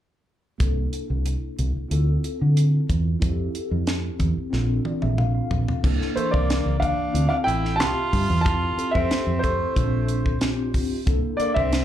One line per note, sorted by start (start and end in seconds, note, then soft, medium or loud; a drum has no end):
0.58 0.85 C2 medium
0.58 1.87 A#3 soft
0.58 1.88 D4 soft
0.58 1.89 E4 soft
0.58 1.89 A4 medium
0.58 kick medium
0.58 closed hi-hat medium
0.93 closed hi-hat soft
1.10 1.35 C2 medium
1.26 closed hi-hat medium
1.59 1.72 C2 medium
1.59 closed hi-hat soft
1.77 muted fingered electric bass stroke soft
1.89 2.17 D2 medium
1.89 3.18 C4 medium
1.89 3.19 E4 medium
1.89 3.20 F4 medium
1.89 closed hi-hat medium
1.93 3.20 A4 medium
2.24 closed hi-hat medium
2.42 2.79 D3 medium
2.57 closed hi-hat medium
2.89 3.15 E2 medium
2.89 kick medium
2.89 closed hi-hat soft
3.19 3.47 F2 medium
3.19 4.49 C4 medium
3.19 4.49 E4 soft
3.19 4.50 G4 medium
3.19 4.51 A4 medium
3.19 kick medium
3.19 closed hi-hat medium
3.55 closed hi-hat soft
3.71 4.09 F2 medium
3.87 snare medium
3.87 closed hi-hat medium
4.19 4.33 E2 medium
4.19 kick medium
4.19 closed hi-hat soft
4.38 muted fingered electric bass stroke soft
4.50 4.79 A#1 medium
4.50 5.80 C4 medium
4.50 5.81 D4 medium
4.50 5.81 F4 medium
4.50 snare soft
4.54 5.82 A4 medium
4.85 5.02 D5 medium
4.85 high tom soft
5.02 5.41 A#1 medium
5.02 5.17 E5 medium
5.02 high tom soft
5.18 5.33 F5 medium
5.18 mid tom medium
5.35 5.80 F5 medium
5.51 5.64 A#1 medium
5.51 floor tom medium
5.68 floor tom medium
5.83 5.97 C2 medium
5.83 6.12 A#3 medium
5.83 6.12 D4 medium
5.83 6.13 E4 medium
5.83 6.13 A4 medium
5.83 kick medium
5.83 crash medium
6.02 snare soft
6.14 7.14 E3 medium
6.14 6.31 A3 medium
6.14 7.14 A#3 medium
6.14 7.14 D4 medium
6.14 7.15 A#4 medium
6.14 6.32 C5 medium
6.14 muted fingered electric bass stroke soft
6.14 closed hi-hat medium
6.31 6.59 C2 medium
6.31 6.78 A#3 medium
6.31 6.82 D5 medium
6.31 kick medium
6.50 snare loud
6.50 closed hi-hat medium
6.66 6.91 C#2 medium
6.79 7.27 D4 medium
6.79 7.27 F5 medium
6.79 kick medium
6.79 closed hi-hat soft
7.13 7.28 D2 medium
7.13 7.72 C4 medium
7.13 7.72 E4 medium
7.13 7.73 F4 medium
7.13 7.73 A4 medium
7.13 closed hi-hat medium
7.29 7.37 D4 medium
7.29 7.34 F5 medium
7.29 muted fingered electric bass stroke soft
7.44 7.80 A1 medium
7.44 7.77 E4 medium
7.44 7.79 G5 medium
7.48 closed hi-hat medium
7.65 snare soft
7.76 7.93 C2 medium
7.76 8.37 C4 medium
7.76 8.41 F4 medium
7.76 8.38 F4 medium
7.76 8.38 G4 medium
7.76 8.37 E5 medium
7.76 8.39 A5 medium
7.80 snare medium
7.80 closed hi-hat medium
8.13 8.26 G2 medium
8.13 kick medium
8.13 open hi-hat medium
8.30 8.46 E2 medium
8.41 8.74 C4 medium
8.41 8.74 E4 medium
8.41 8.91 F4 medium
8.41 8.74 G4 soft
8.41 8.95 A5 medium
8.46 8.71 F2 medium
8.46 8.75 A4 medium
8.46 kick loud
8.46 closed hi-hat medium
8.76 9.74 C4 medium
8.76 9.76 E4 medium
8.76 9.76 G4 medium
8.76 9.76 A4 medium
8.76 muted fingered electric bass stroke soft
8.76 closed hi-hat medium
8.91 9.07 F2 medium
8.91 9.40 C4 medium
8.91 9.38 E5 medium
8.91 kick medium
9.11 snare loud
9.11 closed hi-hat medium
9.27 9.65 F2 medium
9.39 10.37 A3 medium
9.39 10.35 C5 medium
9.44 kick medium
9.44 closed hi-hat soft
9.75 10.78 A#1 medium
9.75 10.34 C4 medium
9.75 10.34 D4 medium
9.75 10.35 F4 medium
9.75 10.35 A4 medium
9.75 kick medium
9.75 closed hi-hat medium
10.08 closed hi-hat soft
10.26 kick medium
10.40 10.99 C4 medium
10.40 10.99 D4 medium
10.40 11.00 F4 medium
10.40 11.00 G4 medium
10.40 snare medium
10.40 closed hi-hat medium
10.74 kick medium
10.74 open hi-hat medium
11.06 11.20 C2 medium
11.06 11.35 A#3 medium
11.06 11.36 D4 medium
11.06 11.36 E4 medium
11.06 11.36 A4 medium
11.06 kick loud
11.06 closed hi-hat medium
11.37 11.85 A#3 medium
11.37 11.55 A#3 medium
11.37 11.85 D4 medium
11.37 11.85 A4 medium
11.37 11.56 D5 medium
11.37 11.85 E5 medium
11.37 muted fingered electric bass stroke soft
11.37 closed hi-hat medium
11.54 11.82 C2 medium
11.54 11.85 C4 medium
11.54 11.85 E5 medium
11.54 kick medium
11.73 snare medium
11.73 closed hi-hat medium